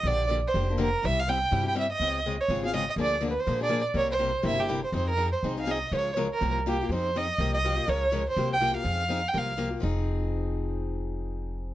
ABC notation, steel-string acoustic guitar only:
X:1
M:4/4
L:1/8
Q:"Swing" 1/4=245
K:Fm
V:1 name="Steel-string acoustic guitar"
[=D,F,B,=DG] z [D,F,B,DG] z [D,F,B,DG] [B,DG] [D,F,B,DG] z | [C,G,C=EG] z [C,G,CEG] z [C,G,CEG] [CEG] [C,G,CEG] z | [D,A,CFA] z [D,A,CFA] z [D,A,CFA] [CFA] [D,A,CFA] z | [=D,F,B,=DA] z [D,F,B,DA] z [D,F,B,DA] [B,DA] [D,F,B,DA] z |
[C,G,B,=EG] z [C,G,B,EG] z [C,G,B,EG] [B,EG] [C,G,B,EG] z | [F,CEA] z [F,CEA] z [F,CEA] [CEA] [F,CEA] z | [D,F,A,DFB] z [D,F,A,DFB] z [C,F,B,FG] z [C,F,B,FG] [B,FG] | [F,CEA] z [F,CEA] z [C,F,B,FG] z [C,F,B,FG] [B,FG] |
[D,F,A,DFB] z [D,F,A,DFB] z [C,F,B,FG] z [C,F,B,FG] [B,FG] | [F,CEA] z [F,CEA] z [C,F,B,FG] z [C,F,B,FG] [B,FG] | [F,CEA]8- | [F,CEA]8 |]